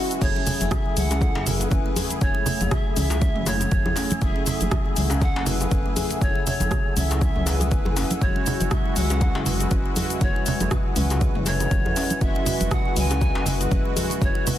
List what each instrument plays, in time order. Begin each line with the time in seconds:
Already playing: analog polysynth G#3 E4 F#4, analog synth pad B4 F#5 G#5 E6, swell
0.11 closed hi-hat, shaker
0.21 detuned saw bass F#1, kalimba F#3, analog synth pad A3 F#5 G#5 E6, analog polysynth A3 E4 G#4, pan flute C#5, kick, closed hi-hat, crash, shaker
0.35 kalimba C#4, muted conga
0.46 kalimba F#3, open hi-hat, low conga, shaker
0.61 detuned saw bass F#1, closed hi-hat, muted conga, high conga, shaker
0.71 kalimba F#3, pan flute E5, kick, cross-stick, closed hi-hat, low conga, shaker
0.86 kalimba F#3
0.96 detuned saw bass C#2, kalimba C#3, pan flute F#5, open hi-hat, mid tom, muted conga, shaker
1.10 kalimba C#4, closed hi-hat, djembe slap, djembe tone, shaker
1.21 kick, closed hi-hat, muted conga, djembe tone, shaker
1.35 detuned saw bass F#1, kalimba C#4, djembe slap
1.46 kalimba F#3, pan flute B4, open hi-hat, muted conga, low conga, shaker
1.60 kalimba F#3, closed hi-hat, djembe tone, shaker
1.71 detuned saw bass F#1, kalimba C#4, kick, closed hi-hat, muted conga, high conga, shaker
1.86 kalimba A3
1.96 kalimba C#3, analog polysynth A3 E4 G#4, open hi-hat, high conga, djembe bass, shaker
2.10 closed hi-hat, muted conga, shaker
2.21 detuned saw bass F#1, analog polysynth A3 E4 G#4, pan flute C#5, kick, closed hi-hat, shaker
2.35 muted conga
2.46 open hi-hat, low conga, shaker
2.61 detuned saw bass F#1, kalimba F#3, closed hi-hat, muted conga, high conga, djembe tone, shaker
2.71 pan flute E5, kick, cross-stick, closed hi-hat, low conga, shaker
2.96 detuned saw bass C#2, kalimba C#4, pan flute E5, open hi-hat, mid tom, muted conga, low conga, shaker
3.10 kalimba F#3, closed hi-hat, djembe slap, djembe tone, shaker
3.21 kick, closed hi-hat, muted conga, shaker
3.35 detuned saw bass F#1, kalimba C#3, mid tom
3.46 kalimba E3, analog polysynth A3 E4 G#4, pan flute C#5, open hi-hat, djembe slap, muted conga, djembe tone, shaker
3.60 kalimba F#3, closed hi-hat, djembe tone, high conga, shaker
3.71 detuned saw bass F#1, analog polysynth A3 E4 G#4, kick, closed hi-hat, muted conga, shaker
3.86 kalimba E4, high conga, djembe tone, djembe bass
3.96 kalimba C#4, open hi-hat, djembe slap, shaker
4.11 closed hi-hat, muted conga, high conga, shaker
4.21 detuned saw bass F#1, kalimba F#3, analog polysynth A3 E4 G#4, pan flute E5, kick, closed hi-hat, shaker
4.36 kalimba C#4, muted conga
4.46 kalimba F#3, pan flute E5, open hi-hat, low conga, shaker
4.61 detuned saw bass F#1, closed hi-hat, muted conga, high conga, shaker
4.71 kick, cross-stick, closed hi-hat, low conga, shaker
4.86 kalimba F#3
4.96 detuned saw bass C#2, kalimba C#3, open hi-hat, mid tom, muted conga, shaker
5.10 kalimba C#4, closed hi-hat, djembe slap, djembe tone, shaker
5.22 pan flute F#5, kick, closed hi-hat, muted conga, djembe tone, shaker
5.36 detuned saw bass F#1, kalimba C#4, djembe slap
5.46 kalimba F#3, pan flute B4, open hi-hat, muted conga, low conga, shaker
5.61 kalimba F#3, closed hi-hat, djembe tone, shaker
5.71 detuned saw bass F#1, kalimba C#4, kick, closed hi-hat, muted conga, high conga, shaker
5.86 kalimba A3
5.96 kalimba C#3, analog polysynth A3 E4 G#4, open hi-hat, high conga, djembe bass, shaker
6.11 closed hi-hat, muted conga, shaker
6.21 detuned saw bass F#1, analog polysynth A3 E4 G#4, pan flute C#5, kick, closed hi-hat, shaker
6.35 muted conga
6.47 pan flute C#5, open hi-hat, low conga, shaker
6.60 detuned saw bass F#1, kalimba F#3, closed hi-hat, muted conga, high conga, djembe tone, shaker
6.71 kick, cross-stick, closed hi-hat, low conga, shaker
6.97 detuned saw bass C#2, kalimba C#4, pan flute E5, open hi-hat, mid tom, muted conga, low conga, shaker
7.11 kalimba F#3, closed hi-hat, djembe slap, djembe tone, shaker
7.21 kalimba F#3, pan flute E5, kick, closed hi-hat, muted conga, shaker
7.36 detuned saw bass C#2, kalimba C#3, mid tom
7.46 kalimba E3, analog polysynth A3 E4 G#4, pan flute B4, open hi-hat, muted conga, djembe slap, djembe tone, shaker
7.60 kalimba F#3, closed hi-hat, djembe tone, high conga, shaker
7.71 detuned saw bass F#1, analog polysynth A3 E4 G#4, kick, closed hi-hat, muted conga, shaker
7.85 kalimba E4, djembe tone, high conga, djembe bass
7.96 kalimba C#4, open hi-hat, djembe slap, shaker
8.10 closed hi-hat, muted conga, high conga, shaker
8.22 detuned saw bass F#1, kalimba F#3, analog polysynth G#3 E4 F#4, analog synth pad B4, pan flute C#5, kick, closed hi-hat, shaker
8.36 kalimba C#4, muted conga
8.46 kalimba F#3, open hi-hat, low conga, shaker
8.60 detuned saw bass F#1, closed hi-hat, muted conga, high conga, shaker
8.71 kalimba F#3, pan flute E5, kick, cross-stick, closed hi-hat, low conga, shaker
8.86 kalimba F#3
8.96 detuned saw bass C#2, kalimba C#3, pan flute F#5, open hi-hat, mid tom, muted conga, shaker
9.10 kalimba C#4, closed hi-hat, djembe slap, djembe tone, shaker
9.21 kick, closed hi-hat, muted conga, djembe tone, shaker
9.35 detuned saw bass F#1, kalimba C#4, djembe slap
9.46 kalimba F#3, pan flute B4, open hi-hat, muted conga, low conga, shaker
9.60 kalimba F#3, closed hi-hat, djembe tone, shaker
9.71 detuned saw bass F#1, kalimba C#4, kick, closed hi-hat, muted conga, high conga, shaker
9.86 kalimba G#3
9.96 kalimba C#3, analog polysynth G#3 E4 F#4, open hi-hat, high conga, djembe bass, shaker
10.10 closed hi-hat, muted conga, shaker
10.21 detuned saw bass F#1, analog polysynth G#3 E4 F#4, pan flute C#5, kick, closed hi-hat, shaker
10.36 muted conga
10.46 open hi-hat, low conga, shaker
10.60 detuned saw bass F#1, kalimba F#3, closed hi-hat, muted conga, high conga, djembe tone, shaker
10.71 pan flute B4, kick, cross-stick, closed hi-hat, low conga, shaker
10.96 detuned saw bass C#2, kalimba C#4, pan flute B4, open hi-hat, mid tom, muted conga, low conga, shaker
11.10 kalimba F#3, closed hi-hat, djembe slap, djembe tone, shaker
11.21 kalimba F#3, kick, closed hi-hat, muted conga, shaker
11.35 detuned saw bass F#1, kalimba C#3, mid tom
11.46 kalimba E3, analog polysynth G#3 E4 F#4, pan flute C#5, open hi-hat, djembe slap, muted conga, djembe tone, shaker
11.60 kalimba F#3, closed hi-hat, djembe tone, high conga, shaker
11.71 detuned saw bass F#1, analog polysynth G#3 F#4, kick, closed hi-hat, muted conga, shaker
11.86 kalimba E4, high conga, djembe tone, djembe bass
11.96 kalimba C#4, open hi-hat, djembe slap, shaker
12.10 closed hi-hat, muted conga, high conga, shaker
12.21 detuned saw bass F#1, kalimba F#3, analog polysynth G#3 E4 F#4, pan flute E5, kick, closed hi-hat, shaker
12.35 kalimba C#4, muted conga
12.46 kalimba F#3, open hi-hat, low conga, shaker
12.61 detuned saw bass F#1, closed hi-hat, muted conga, high conga, shaker
12.71 pan flute F#5, kick, cross-stick, closed hi-hat, low conga, shaker
12.86 kalimba F#3
12.96 detuned saw bass C#2, kalimba C#3, pan flute G#5, open hi-hat, mid tom, muted conga, shaker
13.10 kalimba C#4, closed hi-hat, djembe slap, djembe tone, shaker
13.21 kick, closed hi-hat, muted conga, djembe tone, shaker
13.35 detuned saw bass F#1, kalimba C#4, djembe slap
13.46 kalimba F#3, pan flute B4, open hi-hat, muted conga, low conga, shaker
13.60 kalimba F#3, closed hi-hat, djembe tone, shaker
13.71 detuned saw bass F#1, kalimba C#4, kick, closed hi-hat, muted conga, high conga, shaker
13.85 kalimba G#3
13.96 kalimba C#3, analog polysynth G#3 E4 F#4, open hi-hat, high conga, djembe bass, shaker
14.10 closed hi-hat, muted conga, shaker
14.22 detuned saw bass F#1, analog polysynth G#3 E4 F#4, pan flute C#5, kick, closed hi-hat, shaker
14.35 muted conga
14.47 pan flute B4, open hi-hat, low conga, shaker